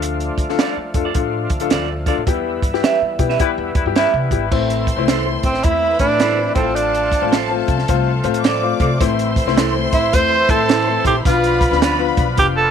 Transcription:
Already playing: upright bass D2, tonewheel organ F3 A3 D4 F4, upright piano D4 F4 A4
0.02 closed hi-hat
0.20 closed hi-hat
0.38 upright bass D2, kick, closed hi-hat
0.49 upright piano D4 F4 A4, snare
0.59 clean electric guitar F4 A4 D5, snare, closed hi-hat
0.77 muted upright bass stroke
0.94 upright bass F2, upright piano D4 F4 A4, kick, closed hi-hat
1.05 clean electric guitar F4 A4 D5
1.15 upright bass A2, upright piano D4 F4 A4, kick, closed hi-hat
1.50 upright bass D2, kick, closed hi-hat
1.60 upright piano D4 F4 A4, closed hi-hat
1.70 upright bass D2, clean electric guitar F4 A4 D5, snare, closed hi-hat
2.06 upright piano D4 F4 A4, clean electric guitar F4 A4 D5, kick, closed hi-hat
2.17 upright bass A2
2.27 upright bass E2, tonewheel organ E3 G3 B3 E4, upright piano B3 E4 G4, kick, closed hi-hat
2.62 upright bass G2, kick, closed hi-hat
2.73 upright piano B3 E4 G4, snare
2.83 clean electric guitar G4 B4 E5, snare, closed hi-hat
3.02 muted upright bass stroke
3.19 upright bass B2, upright piano B3 E4 G4, kick, closed hi-hat
3.30 clean electric guitar G4 B4 E5, snare
3.39 horn section G3 E4 B4, upright piano B3 E4 G4, kick, closed hi-hat
3.58 upright bass E2
3.75 upright bass E2, horn section G3 E4 B4, kick, closed hi-hat
3.86 upright bass G2, upright piano B3 E4 G4
3.96 horn section G3 E4 B4, clean electric guitar G4 B4 E5, snare, closed hi-hat
4.14 upright bass C3
4.31 upright bass G#1, upright piano B3 E4 G4, kick, closed hi-hat
4.51 upright bass A1, tonewheel organ E3 A3 C4 E4, upright piano A3 C4 E4, string section C5 C6, kick, crash
4.70 closed hi-hat
4.87 kick, closed hi-hat
4.97 upright bass C2, upright piano A3 C4 E4
5.08 clean electric guitar E4 A4 C5, snare, closed hi-hat
5.25 upright piano A3 C4 E4
5.43 upright bass A1, tenor saxophone C4, kick, closed hi-hat
5.54 snare
5.63 upright bass E2, upright piano A3 C4 E4, tenor saxophone E4, string section B4 B5, kick, closed hi-hat
5.99 upright bass A2, upright piano A3 C4 D4, tenor saxophone D4, kick, closed hi-hat
6.20 clean electric guitar E4 A4 C5, snare, closed hi-hat
6.38 upright piano A3 C4 E4
6.55 upright bass A1, tonewheel organ F3 C4 F4, upright piano A3 C4 E4, tenor saxophone C4, clean electric guitar F4 A4 C5, string section A4 A5, kick, closed hi-hat
6.62 upright piano F4
6.76 tenor saxophone D4, closed hi-hat
6.94 closed hi-hat
7.12 kick, closed hi-hat
7.21 upright bass A1, upright piano A3 C4 F4
7.32 clean electric guitar F4 A4 C5, snare, closed hi-hat
7.50 upright piano A3 C4 F4
7.68 upright bass C2, kick, closed hi-hat
7.79 snare
7.88 upright bass C2, upright piano A3 C4 F4, kick, closed hi-hat
8.24 upright bass A2, upright piano A3 C4 F4, closed hi-hat
8.34 closed hi-hat
8.44 clean electric guitar F4 A4 C5, string section D5 D6, snare, closed hi-hat
8.63 upright piano A3 C4 F4
8.80 upright bass C3, clean electric guitar F4 A4 C5, kick, closed hi-hat
9.01 upright bass A1, tonewheel organ E3 C4 E4, upright piano A3 C4 E4, string section C5 C6, kick, closed hi-hat
9.19 closed hi-hat
9.36 kick, closed hi-hat
9.46 upright bass C2, upright piano A3 C4 E4, snare
9.57 clean electric guitar E4 A4 C5, snare, closed hi-hat
9.75 upright piano A3 C4 E4
9.92 upright bass A1, tenor saxophone E4, kick, closed hi-hat
10.13 upright bass E2, upright piano A3 C4 E4, tenor saxophone C5, kick, closed hi-hat
10.49 upright bass A2, upright piano A3 C4 E4, tenor saxophone A4, kick, closed hi-hat
10.69 clean electric guitar E4 A4 C5, snare, closed hi-hat
10.87 upright piano A3 C4 E4
11.05 upright bass A#1, clean electric guitar E4 A4 C5, tenor saxophone G4, kick, closed hi-hat
11.25 upright bass B1, tonewheel organ F3 B3 D4 F4, upright piano B3 D4 F4, tenor saxophone F4, string section B4 B5, kick, closed hi-hat
11.44 closed hi-hat
11.61 kick, closed hi-hat
11.71 upright bass D2, upright piano B3 D4 F4, snare
11.82 clean electric guitar D4 F4 B4, snare, closed hi-hat
11.99 upright piano B3 D4 F4
12.17 upright bass B1, kick, closed hi-hat
12.37 upright bass F1, upright piano B3 D4 F4, tenor saxophone G4, kick, closed hi-hat
12.57 tenor saxophone A4

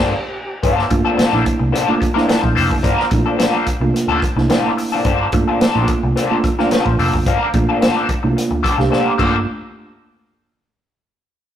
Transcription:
Already playing: picked electric bass G1, clean electric guitar F3 A#3 D4 A4, tonewheel organ G4 G5 A#5
0.63 picked electric bass G1, clean electric guitar F3 A#3 D4 A4, kick, closed hi-hat
0.79 snare
0.90 picked electric bass G1, reed electric piano A3 A#3 D4 F4, muted clean electric guitar stroke, kick, closed hi-hat
1.05 clean electric guitar F3 A#3 D4 A4
1.17 clean electric guitar F3 A#3 D4 A4, muted picked electric bass stroke, snare, closed hi-hat
1.33 picked electric bass A#1, reed electric piano A3 A#3 D4 E4
1.44 muted clean electric guitar stroke, kick, closed hi-hat
1.59 picked electric bass C2, muted clean electric guitar stroke
1.72 clean electric guitar F3 A#3 D4 A4, snare, closed hi-hat
1.88 reed electric piano A3 A#3 D4 F4
2.00 muted clean electric guitar stroke, kick, closed hi-hat
2.14 clean electric guitar F3 A#3 D4 A#4, reed electric piano A3 A#3 D4 E4, snare
2.27 clean electric guitar F3 A#3 D4 A4, snare, closed hi-hat
2.42 picked electric bass A#1, muted clean electric guitar stroke, kick
2.55 picked electric bass F1, clean electric guitar F3 A#3 D4 A4, open hi-hat
2.70 picked electric bass F#1, muted clean electric guitar stroke, kick
2.83 picked electric bass G1, clean electric guitar F3 A#3 D4 A#4, kick, closed hi-hat
3.00 snare
3.10 picked electric bass A#1, reed electric piano A3 A#3 D4 E4, muted clean electric guitar stroke, kick, closed hi-hat
3.19 reed electric piano F4
3.26 clean electric guitar F3 A#3 D4 A4
3.38 clean electric guitar F3 A#3 D4 A4, snare, closed hi-hat
3.66 muted clean electric guitar stroke, muted picked electric bass stroke, kick, closed hi-hat
3.80 picked electric bass C2, reed electric piano A3 A#3 D4 F4, muted clean electric guitar stroke
3.94 muted clean electric guitar stroke, snare, closed hi-hat
4.08 picked electric bass D2, clean electric guitar F3 A#3 D4 A4
4.21 muted clean electric guitar stroke, kick, closed hi-hat
4.36 picked electric bass C2, reed electric piano A3 A#3 D4 E4, muted clean electric guitar stroke, snare
4.49 clean electric guitar F3 A#3 D4 A4, snare, closed hi-hat
4.77 muted clean electric guitar stroke, open hi-hat
4.92 clean electric guitar F3 A#3 D4 A4
5.05 picked electric bass G1, clean electric guitar F3 A#3 D4 A4, kick, closed hi-hat
5.32 picked electric bass G1, reed electric piano A3 A#3 D4 F4, muted clean electric guitar stroke, kick, closed hi-hat
5.48 clean electric guitar F3 A#3 D4 A4
5.61 clean electric guitar F3 A#3 D4 A4, muted picked electric bass stroke, snare, closed hi-hat
5.75 picked electric bass A#1, reed electric piano A3 A#3 D4 E4
5.82 reed electric piano F4
5.88 muted clean electric guitar stroke, kick, closed hi-hat
6.03 picked electric bass C2, muted clean electric guitar stroke
6.16 clean electric guitar F3 A#3 D4 A4, snare, closed hi-hat
6.31 reed electric piano A3 A#3 D4 F4
6.44 muted clean electric guitar stroke, kick, closed hi-hat
6.58 clean electric guitar F3 A#3 D4 A#4, reed electric piano A3 A#3 D4 F4, snare
6.71 clean electric guitar F3 A#3 D4 A4, snare, closed hi-hat
6.85 picked electric bass A#1, muted clean electric guitar stroke, kick
6.98 picked electric bass F1, clean electric guitar F3 A#3 D4 A4, open hi-hat
7.13 picked electric bass F#1, muted clean electric guitar stroke, kick
7.26 picked electric bass G1, clean electric guitar F3 A#3 D4 A#4, kick, closed hi-hat
7.53 picked electric bass A#1, reed electric piano A3 A#3 D4 F4, muted clean electric guitar stroke, kick, closed hi-hat
7.69 clean electric guitar F3 A#3 D4 A4
7.81 clean electric guitar F3 A#3 D4 A4, snare, closed hi-hat
8.09 muted picked electric bass stroke, muted clean electric guitar stroke, kick, closed hi-hat
8.23 picked electric bass C2, reed electric piano A3 A#3 D4 E4, muted clean electric guitar stroke
8.30 reed electric piano F4
8.36 muted clean electric guitar stroke, snare, closed hi-hat
8.51 picked electric bass D2, muted clean electric guitar stroke
8.63 clean electric guitar F3 A#3 D4 A4, kick, closed hi-hat
8.78 picked electric bass C2, reed electric piano A3 A#3 D4 G4, muted clean electric guitar stroke, snare
8.90 clean electric guitar F3 A#3 D4 A4, snare
9.18 picked electric bass G1, clean electric guitar F3 A#3 D4 A4, reed electric piano A3 A#3 D4 F4, kick, crash

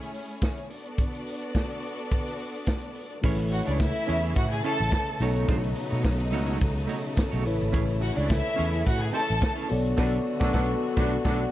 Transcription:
Already playing: string section A3 C#4 E4 G#4 C#5
0.03 closed hi-hat
0.14 open hi-hat
0.31 closed hi-hat
0.41 kick, snare, closed hi-hat
0.57 closed hi-hat
0.70 string section B3 D4 F#4 A4 D5, open hi-hat
0.85 closed hi-hat
0.98 kick, closed hi-hat
1.15 closed hi-hat
1.26 open hi-hat
1.42 closed hi-hat
1.55 kick, snare, closed hi-hat
1.71 closed hi-hat
1.82 open hi-hat
1.98 closed hi-hat
2.11 kick, closed hi-hat
2.27 closed hi-hat
2.39 open hi-hat
2.55 closed hi-hat
2.66 kick, snare, closed hi-hat
2.81 closed hi-hat
2.95 open hi-hat
3.10 closed hi-hat
3.21 fingered electric bass A1, string section C#3 E3 A3 E4, tine electric piano A3 E4 A4 B4 C#5, clean electric guitar C#4 E4 G#4, kick, crash
3.26 clean electric guitar C#5
3.39 muted clean electric guitar stroke, closed hi-hat
3.51 violin section F#4 F#5, muted clean electric guitar stroke, open hi-hat
3.66 fingered electric bass C#2, clean electric guitar C#4 E4 G#4 C#5, violin section D4 D5, closed hi-hat
3.80 violin section E4 E5, muted clean electric guitar stroke, kick, snare, closed hi-hat
3.95 muted clean electric guitar stroke, closed hi-hat
4.07 fingered electric bass E2, clean electric guitar C#4 E4 G#4 C#5, open hi-hat
4.22 clean electric guitar C#4 E4 G#4 C#5, closed hi-hat
4.35 fingered electric bass A2, violin section F#4 F#5, kick, closed hi-hat
4.51 violin section G#4 G#5, muted clean electric guitar stroke, closed hi-hat
4.63 clean electric guitar C#4 E4 G#4 C#5, violin section A4 A5, open hi-hat
4.80 fingered electric bass A1, muted clean electric guitar stroke, closed hi-hat
4.91 muted clean electric guitar stroke, kick, snare, closed hi-hat
5.06 muted clean electric guitar stroke, closed hi-hat
5.19 fingered electric bass B1, tine electric piano B2 B3 D#4 A4 C#5, string section F#3 B3 D#4, clean electric guitar A3 D#4 F#4 C#5, open hi-hat
5.35 clean electric guitar A3 D#4 F#4 C#5, closed hi-hat
5.48 fingered electric bass B1, clean electric guitar A3 D#4 F#4 C#5, kick, closed hi-hat
5.63 muted clean electric guitar stroke, closed hi-hat
5.75 muted clean electric guitar stroke, open hi-hat
5.90 fingered electric bass B2, clean electric guitar A3 D#4 F#4 C#5, closed hi-hat
6.03 fingered electric bass B1, muted clean electric guitar stroke, kick, snare, closed hi-hat
6.19 muted clean electric guitar stroke, closed hi-hat
6.32 fingered electric bass C#2, clean electric guitar A3 D#4 F#4 C#5, open hi-hat
6.46 clean electric guitar A3 D#4 F#4 C#5, closed hi-hat
6.61 fingered electric bass C#2, kick, closed hi-hat
6.74 muted clean electric guitar stroke, closed hi-hat
6.87 clean electric guitar A3 D#4 F#4 C#5, open hi-hat
7.03 muted clean electric guitar stroke, closed hi-hat
7.17 muted clean electric guitar stroke, kick, snare, closed hi-hat
7.31 fingered electric bass B1, clean electric guitar A3 D#4 F#4 C#5, closed hi-hat
7.44 fingered electric bass A1, string section E3 E4, tine electric piano A3 E4 A4 B4 C#5, muted clean electric guitar stroke, open hi-hat
7.59 fingered electric bass G#1, muted clean electric guitar stroke, closed hi-hat
7.72 fingered electric bass A1, clean electric guitar C#4 E4 G#4 C#5, kick, closed hi-hat
7.87 muted clean electric guitar stroke, closed hi-hat
8.00 violin section F#4 F#5, muted clean electric guitar stroke, open hi-hat
8.15 fingered electric bass C#2, clean electric guitar C#4 E4 G#4 C#5, violin section D4 D5, closed hi-hat
8.30 violin section E4 E5, muted clean electric guitar stroke, kick, snare, closed hi-hat
8.44 muted clean electric guitar stroke, closed hi-hat
8.56 fingered electric bass E2, clean electric guitar C#4 E4 G#4 C#5, open hi-hat
8.71 clean electric guitar C#4 E4 G#4 C#5, closed hi-hat
8.87 fingered electric bass A2, violin section F#4 F#5, kick, closed hi-hat
9.00 violin section G#4 G#5, muted clean electric guitar stroke, closed hi-hat
9.12 clean electric guitar C#4 E4 G#4 C#5, violin section A4 A5, open hi-hat
9.28 fingered electric bass A1, muted clean electric guitar stroke, closed hi-hat
9.41 muted clean electric guitar stroke, kick, snare, closed hi-hat
9.56 clean electric guitar C#4 E4 G#4 C#5, closed hi-hat
9.69 fingered electric bass B1, string section D3 F#3 B3 F#4, tine electric piano B3 F#4 A4 C#5 D5, muted clean electric guitar stroke, open hi-hat
9.83 muted clean electric guitar stroke, closed hi-hat
9.97 fingered electric bass B1, horn section F#3 D4 A4, clean electric guitar A3 D4 F#4 B4, tine electric piano B3 F#4 A4 D5, kick, snare, crash
10.40 fingered electric bass B1, horn section F#3 D4 A4, clean electric guitar A3 D4 F#4 B4, tine electric piano B3 F#4 A4 D5, kick, snare
10.53 fingered electric bass B1, horn section F#3 D4 A4, clean electric guitar A3 D4 F#4 B4, tine electric piano B3 F#4 A4 D5, kick, snare
10.97 fingered electric bass B1, horn section F#3 D4 A4, clean electric guitar A3 D4 F#4 B4, tine electric piano D5 F#5, kick, snare
11.24 fingered electric bass B1, horn section F#3 D4 A4, clean electric guitar A3 D4 F#4 B4, tine electric piano D5 F#5, kick, snare

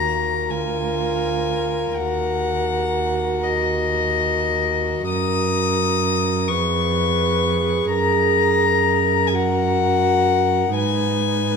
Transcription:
Already playing: cello D#2, viola F#4, violin A#4 A#5
0.49 cello D2, viola F4, violin G#5
1.97 cello D#2, viola F#4, violin F#5
3.44 violin D#5
5.07 cello F#2, violin A#4 D#6
6.48 cello F2, viola G#4, violin B4 C#6
7.91 cello F#2, violin A#4 A#5
9.27 violin G#5
9.34 viola F#4, violin F#5
10.75 cello G#2, viola D#4, violin B4 G#5

